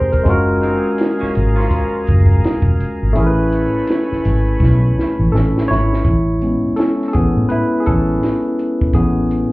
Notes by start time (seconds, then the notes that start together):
Already playing: F1 G#3 C4 D#4 G#4 A#4 C5 G5 A#5 C6
0.12 A#4, kick, closed hi-hat
0.23 F#1 G#3 C#4 F4 G#4 F5 G#5 A#5, kick, closed hi-hat
0.29 F#4 A#4
0.61 D#3 G#3 C4 D#4, closed hi-hat
0.98 snare, closed hi-hat
1.18 C#3 G#3 A#3 C#4, closed hi-hat
1.23 muted fingered electric bass stroke, snare
1.35 G#1, closed hi-hat
1.55 F3 A#3 C#4 F4
1.59 snare
1.71 kick, closed hi-hat
2.07 F#1, kick, closed hi-hat
2.26 kick
2.44 muted fingered electric bass stroke, snare, closed hi-hat
2.62 F1, kick
2.80 closed hi-hat
3.03 G#1
3.13 A3 C#4 E4 C#5 G#5 B5, closed hi-hat
3.17 A1 G#4 A#4
3.27 B4
3.52 closed hi-hat
3.87 snare, closed hi-hat
4.12 muted fingered electric bass stroke, snare
4.25 G#1, closed hi-hat
4.60 B1, kick, snare
4.98 muted fingered electric bass stroke, snare
5.19 A1
5.32 A1 C#4 A4, snare
5.58 snare
5.68 G#1 E4 C#5, snare
5.93 snare
6.05 A1, kick, closed hi-hat
6.41 G#3 B3 C#4, closed hi-hat
6.65 muted fingered electric bass stroke
6.76 C#4 A4, snare, closed hi-hat
7.02 snare
7.08 A4
7.13 A1 B3 G#4, kick, closed hi-hat
7.37 A2
7.49 E4 B4, closed hi-hat
7.80 G#4
7.86 A1 C#4 A4, kick, closed hi-hat
8.23 snare, closed hi-hat
8.59 closed hi-hat
8.81 kick
8.93 A1 A3 B3 C#4 G#4, kick, closed hi-hat
9.31 closed hi-hat